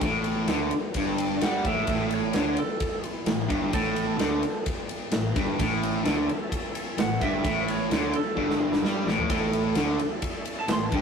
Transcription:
0.01 fingered electric bass A1, distorted electric guitar A2, kick, ride
0.24 ride
0.47 fingered electric bass D2, distorted electric guitar D3, snare, ride
0.71 ride
0.94 fingered electric bass G1, distorted electric guitar G2, kick, ride
1.18 ride
1.41 fingered electric bass G2, distorted electric guitar G3, lead electric guitar F#5, snare, ride
1.64 fingered electric bass A1, distorted electric guitar A2, lead electric guitar E5, kick, ride
1.87 fingered electric bass A1, distorted electric guitar A2, kick, ride
2.11 lead electric guitar C#5, ride
2.33 fingered electric bass D2, distorted electric guitar D3, snare, ride
2.57 lead electric guitar A4, ride
2.80 kick, ride
3.04 lead electric guitar E4, ride
3.26 fingered electric bass A1, distorted electric guitar A2, snare, ride
3.49 fingered electric bass G1, distorted electric guitar G2, kick, ride
3.73 fingered electric bass A1, distorted electric guitar A2, lead electric guitar A4, kick, ride
3.96 ride
4.19 fingered electric bass D2, distorted electric guitar D3, snare, ride
4.43 ride
4.66 kick, ride
4.89 ride
5.12 fingered electric bass A1, distorted electric guitar A2, snare, ride
5.36 fingered electric bass G1, distorted electric guitar G2, kick, ride
5.58 fingered electric bass A1, distorted electric guitar A2, tonewheel organ C#4 E4 A4, kick, ride
5.83 ride
6.04 fingered electric bass D2, distorted electric guitar D3, snare, ride
6.29 ride
6.52 kick, ride
6.75 ride
6.97 fingered electric bass A1, distorted electric guitar A2, lead electric guitar F#5, snare, ride
7.21 fingered electric bass G1, distorted electric guitar G2, lead electric guitar E5, kick, ride
7.45 fingered electric bass A1, distorted electric guitar A2, kick, ride
7.68 lead electric guitar C#5, ride
7.90 fingered electric bass D2, distorted electric guitar D3, snare, ride
8.13 lead electric guitar A4, ride
8.36 fingered electric bass G1, distorted electric guitar G2, kick
8.50 snare
8.62 lead electric guitar E4
8.73 snare
8.82 fingered electric bass G2, distorted electric guitar G3, snare
9.06 fingered electric bass A1, distorted electric guitar A2, snare
9.19 floor tom
9.29 fingered electric bass A1, distorted electric guitar A2, tonewheel organ C#4 E4 A4, lead electric guitar A4, kick, ride
9.53 ride
9.75 fingered electric bass D2, distorted electric guitar D3, snare, ride
9.99 ride
10.22 kick, ride
10.45 ride
10.60 lead electric guitar A5
10.68 fingered electric bass A1, distorted electric guitar A2, lead electric guitar C6, snare, ride
10.83 lead electric guitar A5
10.92 fingered electric bass G1, distorted electric guitar G2, lead electric guitar G5, kick, ride

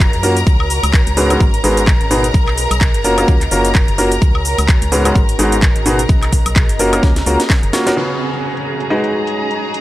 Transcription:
Already playing: fm bass F#1, ambient pad F#4 C#5, string section A#4 A#5
0.00 kick, clap, cabasa
0.13 fm bass F#2, closed hi-hat
0.23 upright piano A#3 C#4 F4 F#4 A#4, open hi-hat, cabasa
0.37 closed hi-hat, cabasa
0.47 fm bass C#2, kick, cabasa
0.60 high woodblock
0.70 open hi-hat, cabasa
0.83 fm bass C#2, closed hi-hat, cabasa, high woodblock
0.88 ambient pad G#4 D#5
0.94 kick, clap, cabasa
1.07 fm bass C#2, closed hi-hat
1.17 upright piano G#2 B3 C#4 F#4 G#4 B4, open hi-hat, cabasa
1.30 upright piano G#2 B3 C#4 F#4 G#4 B4, closed hi-hat, cabasa, high woodblock
1.40 fm bass G#1, kick, cabasa
1.54 closed hi-hat
1.64 fm bass G#1, upright piano G#2 B3 D#4 F#4 G#4 B4, open hi-hat, cabasa
1.77 closed hi-hat, cabasa
1.87 kick, clap, cabasa
2.01 fm bass G#1, closed hi-hat
2.11 upright piano B2 B3 D#4 F#4 G#4 B4, open hi-hat, cabasa
2.24 closed hi-hat, cabasa
2.34 fm bass B1, kick, cabasa
2.48 clap, high woodblock
2.58 ambient pad F#4, open hi-hat, cabasa
2.67 ambient pad C#5
2.71 fm bass B1, closed hi-hat, cabasa, high woodblock
2.81 kick, clap, cabasa
2.94 fm bass F#1, closed hi-hat
3.04 upright piano A#3 C#4 F4 F#4 A#4, open hi-hat, cabasa
3.18 upright piano A#3 C#4 F4 F#4 A#4, closed hi-hat, cabasa, high woodblock
3.28 fm bass C#2, kick, cabasa
3.41 clap, closed hi-hat
3.51 fm bass F#1, upright piano A#3 C#4 F4 F#4 A#4, open hi-hat, cabasa
3.65 closed hi-hat, cabasa
3.75 kick, clap, cabasa
3.88 fm bass F#1, closed hi-hat
3.98 upright piano A#3 C#4 F4 F#4 A#4, open hi-hat, cabasa
4.12 closed hi-hat, cabasa
4.22 fm bass C#2, kick, cabasa
4.35 high woodblock
4.40 ambient pad D#5
4.45 open hi-hat, cabasa
4.58 fm bass C#2, ambient pad G#4, closed hi-hat, cabasa, high woodblock
4.69 kick, clap, cabasa
4.82 fm bass C#2, closed hi-hat
4.92 upright piano G#2 B3 C#4 F#4 G#4 B4, open hi-hat, cabasa
5.05 upright piano G#2 B3 C#4 F#4 G#4 B4, closed hi-hat, cabasa, high woodblock
5.15 fm bass G#1, kick, cabasa
5.29 closed hi-hat
5.39 fm bass G#1, upright piano G#2 B3 D#4 F#4 G#4 B4, open hi-hat, cabasa
5.52 closed hi-hat, cabasa
5.62 kick, clap, cabasa
5.76 fm bass G#1, closed hi-hat
5.86 upright piano B2 B3 D#4 F#4 G#4 B4, open hi-hat, cabasa
5.99 closed hi-hat, cabasa
6.09 fm bass B1, kick, cabasa
6.23 clap, closed hi-hat, high woodblock
6.31 ambient pad F#4, kick, open hi-hat, cabasa
6.42 fm bass B1, ambient pad C#5, closed hi-hat, high woodblock
6.46 cabasa
6.56 kick, clap, cabasa
6.69 fm bass F#1, closed hi-hat
6.79 upright piano A#3 C#4 F4 F#4 A#4, open hi-hat, cabasa
6.93 upright piano A#3 C#4 F4 F#4 A#4, closed hi-hat, cabasa, high woodblock
7.03 fm bass C#2, kick, snare, cabasa
7.16 snare, closed hi-hat
7.26 fm bass C#2, upright piano A#3 C#4 F4 F#4 A#4, open hi-hat, cabasa
7.40 snare, closed hi-hat, cabasa
7.50 kick, snare, clap, cabasa
7.63 fm bass F#1, closed hi-hat
7.73 upright piano A#3 C#4 F4 F#4 C#5, snare, open hi-hat, cabasa
7.87 upright piano A#3 C#4 F4 F#4 A#4, snare, closed hi-hat, cabasa
7.97 upright piano C#3 C#4 F#4 G#4 B4 C#5, string section G#4 A#5, downlifter
8.33 closed hi-hat
8.40 ambient pad G#4 D#5
8.57 closed hi-hat
8.80 closed hi-hat
8.90 upright piano G#3 D#4 F#4 G#4 B4 D#5
9.04 closed hi-hat
9.27 closed hi-hat
9.51 closed hi-hat
9.74 closed hi-hat

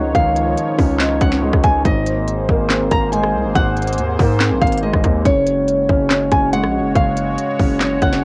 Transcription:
Already playing: felt piano D#3 G#3 C#4 D#4, analog synth pad F3 D#4 C#5, nylon-string guitar F#5
0.00 808-style bass C#2
0.15 808-style bass C#2, felt piano D#3, nylon-string guitar F5, kick, closed hi-hat
0.36 closed hi-hat
0.57 closed hi-hat
0.78 808-style bass C#2, felt piano C#4, kick, open hi-hat
1.00 felt piano D#4, snare, clap, closed hi-hat
1.21 808-style bass C#2, felt piano C#4, nylon-string guitar F#5, kick, cross-stick, closed hi-hat
1.32 snare
1.42 felt piano G#3
1.53 808-style bass C#2, kick, cross-stick
1.64 808-style bass C#2, nylon-string guitar G#5, kick, closed hi-hat
1.85 808-style bass G#1, felt piano G#2, analog synth pad A#3 G#4 C5, nylon-string guitar D#5, kick, closed hi-hat
2.06 closed hi-hat
2.28 closed hi-hat
2.49 808-style bass G#1, felt piano A#3, kick
2.70 felt piano C4, snare, clap, closed hi-hat
2.91 808-style bass G#1, felt piano A#3, nylon-string guitar A#5, kick, cross-stick, closed hi-hat
3.12 felt piano G#3, nylon-string guitar G#5, closed hi-hat
3.23 cross-stick
3.34 808-style bass C2
3.45 808-style bass G#1
3.55 808-style bass G#1, felt piano G#2, nylon-string guitar F#5, kick, closed hi-hat
3.77 closed hi-hat
3.82 closed hi-hat
3.87 closed hi-hat
3.92 closed hi-hat
3.98 808-style bass D#2, closed hi-hat
4.19 808-style bass G#2, felt piano A#3, kick, open hi-hat
4.40 felt piano C4, snare, clap, closed hi-hat
4.51 808-style bass A#1
4.62 808-style bass G#1, felt piano A#3, nylon-string guitar F5, kick, closed hi-hat
4.67 closed hi-hat
4.72 closed hi-hat
4.78 closed hi-hat
4.83 felt piano G#3, nylon-string guitar D#5
4.94 808-style bass G#1, kick, cross-stick
5.04 808-style bass D#2, kick, closed hi-hat
5.25 808-style bass F#1, felt piano C#3, analog synth pad G#3 F#4 C#5, nylon-string guitar C#5, kick, closed hi-hat
5.47 closed hi-hat
5.68 closed hi-hat
5.89 808-style bass F#1, felt piano C#4, kick
6.11 felt piano C#5, snare, clap, closed hi-hat
6.32 808-style bass F#1, felt piano C#4, nylon-string guitar G#5, kick, cross-stick, closed hi-hat
6.53 felt piano G#3, nylon-string guitar F#5, closed hi-hat
6.64 808-style bass A#1, cross-stick
6.80 808-style bass F#1
6.96 808-style bass F#1, felt piano C#3, nylon-string guitar F5, kick, closed hi-hat
7.17 closed hi-hat
7.38 closed hi-hat
7.59 808-style bass F#1, felt piano C#4, kick, open hi-hat
7.81 felt piano C#5, snare, clap, closed hi-hat
8.02 808-style bass F#1, felt piano C#4, nylon-string guitar F#5, kick, cross-stick, closed hi-hat
8.13 snare

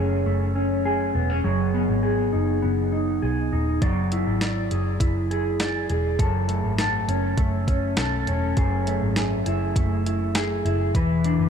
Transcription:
Already playing: picked electric bass F#1, clean electric guitar F#2 A3 C#4 G#4
0.26 picked electric bass F#1, clean electric guitar A3
0.55 clean electric guitar C#4
0.85 clean electric guitar G#4
1.15 picked electric bass E1, clean electric guitar B3
1.30 clean electric guitar C#4
1.44 picked electric bass F#1, clean electric guitar F#3 G#4
1.74 clean electric guitar B3
1.90 picked electric bass G#1
2.03 clean electric guitar G#4
2.33 picked electric bass F#1, clean electric guitar D#4
2.62 picked electric bass F#1, clean electric guitar B3
2.92 clean electric guitar D#4
3.22 picked electric bass B1, clean electric guitar G#4
3.53 picked electric bass D#1, clean electric guitar D#4
3.82 picked electric bass F#1, clean electric guitar F#3 D5, kick, closed hi-hat
4.12 clean electric guitar E4, closed hi-hat
4.27 picked electric bass G#1
4.41 clean electric guitar D5, snare, closed hi-hat
4.71 picked electric bass F#1, clean electric guitar G#4, closed hi-hat
5.00 picked electric bass F#1, clean electric guitar E4, kick, closed hi-hat
5.31 clean electric guitar G#4, closed hi-hat
5.60 clean electric guitar D5, snare, closed hi-hat
5.90 picked electric bass E1, clean electric guitar G#4, closed hi-hat
6.19 picked electric bass F#1, clean electric guitar F#2 A4, kick, closed hi-hat
6.48 clean electric guitar A3, closed hi-hat
6.64 picked electric bass G#1
6.79 clean electric guitar A4, snare, closed hi-hat
7.08 picked electric bass F#1, clean electric guitar C#4, closed hi-hat
7.37 picked electric bass F#1, clean electric guitar A3, kick, closed hi-hat
7.68 clean electric guitar C#4, kick, closed hi-hat
7.97 picked electric bass B1, clean electric guitar A4, snare, closed hi-hat
8.27 picked electric bass E1, clean electric guitar C#4, closed hi-hat
8.57 picked electric bass F#1, clean electric guitar F#2 G#4, kick, closed hi-hat
8.87 clean electric guitar A3, closed hi-hat
9.02 picked electric bass G#1
9.16 clean electric guitar G#4, snare, closed hi-hat
9.46 picked electric bass F#1, clean electric guitar E4, closed hi-hat
9.76 picked electric bass F#1, clean electric guitar A3, kick, closed hi-hat
10.06 clean electric guitar E4, closed hi-hat
10.35 clean electric guitar G#4, snare, closed hi-hat
10.65 picked electric bass F#1, clean electric guitar E4, closed hi-hat
10.95 picked electric bass E1, clean electric guitar E3 B4, kick, closed hi-hat
11.24 clean electric guitar D4, closed hi-hat
11.39 picked electric bass F#1

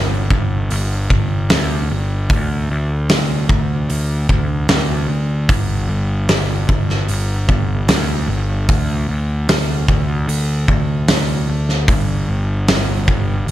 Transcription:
Already playing: picked electric bass G1
0.30 picked electric bass G1, kick
0.70 picked electric bass G1, open hi-hat
1.10 picked electric bass G1, kick
1.50 picked electric bass D2, snare, open hi-hat
1.90 picked electric bass G1
2.30 picked electric bass D2, kick, open hi-hat
2.71 picked electric bass D2
3.09 picked electric bass D2, snare, open hi-hat
3.49 picked electric bass D2, kick
3.90 picked electric bass D2, open hi-hat
4.29 picked electric bass D2, kick
4.69 picked electric bass D2, snare, open hi-hat
5.09 picked electric bass D2
5.49 picked electric bass G1, kick, open hi-hat
5.89 picked electric bass G1
6.29 picked electric bass G1, snare, open hi-hat
6.69 picked electric bass G1, kick
6.89 snare
7.08 picked electric bass G1, open hi-hat
7.49 picked electric bass G1, kick
7.88 picked electric bass D2, snare, open hi-hat
8.28 picked electric bass G1
8.69 picked electric bass D2, kick, open hi-hat
9.09 picked electric bass D2
9.49 picked electric bass D2, snare, open hi-hat
9.88 picked electric bass D2, kick
10.28 picked electric bass D2, open hi-hat
10.68 picked electric bass D2, kick
11.08 picked electric bass D2, snare, open hi-hat
11.49 picked electric bass D2
11.69 snare
11.88 picked electric bass G1, kick, open hi-hat
12.29 picked electric bass G1
12.68 picked electric bass G1, snare, open hi-hat
13.08 picked electric bass G1, kick
13.47 picked electric bass G1, open hi-hat

